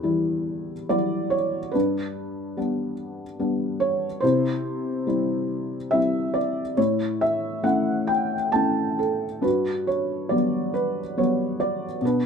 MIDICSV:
0, 0, Header, 1, 2, 480
1, 0, Start_track
1, 0, Tempo, 854701
1, 981, Time_signature, 3, 2, 24, 8
1, 981, Tempo, 825309
1, 2421, Tempo, 849858
1, 3861, Tempo, 883652
1, 5781, Tempo, 851064
1, 6882, End_track
2, 0, Start_track
2, 0, Title_t, "Felt piano"
2, 0, Program_c, 0, 0
2, 0, Control_c, 0, 64, 127
2, 0, Note_on_c, 0, 40, 50
2, 0, Note_on_c, 0, 67, 44
2, 0, Note_on_c, 0, 71, 59
2, 17, Note_on_c, 0, 52, 38
2, 20, Note_on_c, 0, 55, 36
2, 20, Note_on_c, 0, 64, 45
2, 405, Note_off_c, 0, 52, 0
2, 407, Note_off_c, 0, 55, 0
2, 408, Note_off_c, 0, 64, 0
2, 485, Note_off_c, 0, 67, 0
2, 502, Note_on_c, 0, 74, 77
2, 504, Note_on_c, 0, 54, 41
2, 507, Note_on_c, 0, 55, 35
2, 509, Note_on_c, 0, 64, 45
2, 531, Note_off_c, 0, 71, 0
2, 731, Note_on_c, 0, 73, 72
2, 749, Note_off_c, 0, 74, 0
2, 885, Note_off_c, 0, 54, 0
2, 887, Note_off_c, 0, 55, 0
2, 888, Note_off_c, 0, 64, 0
2, 958, Note_off_c, 0, 73, 0
2, 962, Note_off_c, 0, 40, 0
2, 963, Note_on_c, 0, 71, 65
2, 975, Note_on_c, 0, 62, 45
2, 983, Note_on_c, 0, 43, 58
2, 988, Control_c, 0, 64, 0
2, 1102, Control_c, 0, 64, 127
2, 1458, Note_off_c, 0, 62, 0
2, 1460, Note_on_c, 0, 55, 45
2, 1462, Note_on_c, 0, 59, 38
2, 1466, Note_on_c, 0, 62, 46
2, 1664, Note_off_c, 0, 71, 0
2, 1842, Note_off_c, 0, 55, 0
2, 1843, Note_off_c, 0, 59, 0
2, 1846, Note_off_c, 0, 62, 0
2, 1939, Note_on_c, 0, 55, 45
2, 1940, Note_on_c, 0, 59, 40
2, 1941, Note_on_c, 0, 62, 50
2, 2176, Note_on_c, 0, 73, 70
2, 2325, Note_off_c, 0, 55, 0
2, 2325, Note_off_c, 0, 59, 0
2, 2326, Note_off_c, 0, 62, 0
2, 2398, Note_off_c, 0, 43, 0
2, 2411, Note_on_c, 0, 72, 73
2, 2423, Note_on_c, 0, 64, 52
2, 2426, Note_off_c, 0, 73, 0
2, 2426, Note_on_c, 0, 48, 66
2, 2427, Control_c, 0, 64, 0
2, 2540, Control_c, 0, 64, 127
2, 2895, Note_off_c, 0, 64, 0
2, 2898, Note_on_c, 0, 55, 46
2, 2902, Note_on_c, 0, 60, 41
2, 2903, Note_on_c, 0, 64, 50
2, 3285, Note_off_c, 0, 55, 0
2, 3287, Note_off_c, 0, 60, 0
2, 3288, Note_off_c, 0, 64, 0
2, 3373, Note_on_c, 0, 76, 78
2, 3385, Note_on_c, 0, 55, 42
2, 3388, Note_on_c, 0, 60, 39
2, 3389, Note_on_c, 0, 64, 48
2, 3405, Note_off_c, 0, 72, 0
2, 3615, Note_on_c, 0, 74, 72
2, 3624, Note_off_c, 0, 76, 0
2, 3768, Note_off_c, 0, 55, 0
2, 3769, Note_off_c, 0, 60, 0
2, 3770, Note_off_c, 0, 64, 0
2, 3841, Note_off_c, 0, 48, 0
2, 3861, Note_on_c, 0, 73, 72
2, 3863, Note_on_c, 0, 45, 56
2, 3865, Note_off_c, 0, 74, 0
2, 3867, Control_c, 0, 64, 0
2, 3869, Note_on_c, 0, 64, 51
2, 3969, Control_c, 0, 64, 127
2, 4100, Note_off_c, 0, 73, 0
2, 4100, Note_on_c, 0, 76, 76
2, 4323, Note_off_c, 0, 64, 0
2, 4327, Note_on_c, 0, 57, 37
2, 4330, Note_on_c, 0, 61, 35
2, 4331, Note_on_c, 0, 64, 43
2, 4331, Note_on_c, 0, 78, 73
2, 4340, Note_off_c, 0, 76, 0
2, 4568, Note_on_c, 0, 79, 74
2, 4577, Note_off_c, 0, 78, 0
2, 4715, Note_off_c, 0, 57, 0
2, 4717, Note_off_c, 0, 61, 0
2, 4718, Note_off_c, 0, 64, 0
2, 4796, Note_off_c, 0, 79, 0
2, 4811, Note_on_c, 0, 81, 74
2, 4816, Note_on_c, 0, 57, 36
2, 4817, Note_on_c, 0, 61, 34
2, 4821, Note_on_c, 0, 64, 40
2, 5065, Note_off_c, 0, 81, 0
2, 5065, Note_on_c, 0, 69, 61
2, 5206, Note_off_c, 0, 57, 0
2, 5207, Note_off_c, 0, 61, 0
2, 5209, Note_off_c, 0, 64, 0
2, 5282, Note_off_c, 0, 45, 0
2, 5296, Note_on_c, 0, 43, 52
2, 5301, Note_on_c, 0, 71, 67
2, 5309, Note_on_c, 0, 66, 49
2, 5310, Control_c, 0, 64, 0
2, 5313, Note_off_c, 0, 69, 0
2, 5413, Control_c, 0, 64, 127
2, 5545, Note_on_c, 0, 73, 67
2, 5550, Note_off_c, 0, 71, 0
2, 5773, Note_on_c, 0, 74, 69
2, 5782, Note_on_c, 0, 55, 37
2, 5783, Note_on_c, 0, 54, 43
2, 5786, Note_on_c, 0, 59, 47
2, 5790, Note_off_c, 0, 73, 0
2, 6005, Note_off_c, 0, 74, 0
2, 6007, Note_off_c, 0, 66, 0
2, 6024, Note_on_c, 0, 71, 66
2, 6173, Note_off_c, 0, 54, 0
2, 6173, Note_off_c, 0, 55, 0
2, 6175, Note_off_c, 0, 59, 0
2, 6269, Note_on_c, 0, 54, 42
2, 6271, Note_on_c, 0, 55, 37
2, 6274, Note_on_c, 0, 73, 68
2, 6275, Note_on_c, 0, 59, 47
2, 6277, Note_off_c, 0, 71, 0
2, 6496, Note_off_c, 0, 73, 0
2, 6510, Note_on_c, 0, 74, 71
2, 6650, Note_off_c, 0, 54, 0
2, 6651, Note_off_c, 0, 55, 0
2, 6653, Note_off_c, 0, 59, 0
2, 6720, Note_off_c, 0, 43, 0
2, 6744, Note_on_c, 0, 47, 59
2, 6752, Note_off_c, 0, 74, 0
2, 6754, Control_c, 0, 64, 0
2, 6764, Note_on_c, 0, 62, 45
2, 6766, Note_on_c, 0, 71, 63
2, 6836, Control_c, 0, 64, 127
2, 6882, Note_off_c, 0, 47, 0
2, 6882, Note_off_c, 0, 62, 0
2, 6882, Note_off_c, 0, 71, 0
2, 6882, End_track
0, 0, End_of_file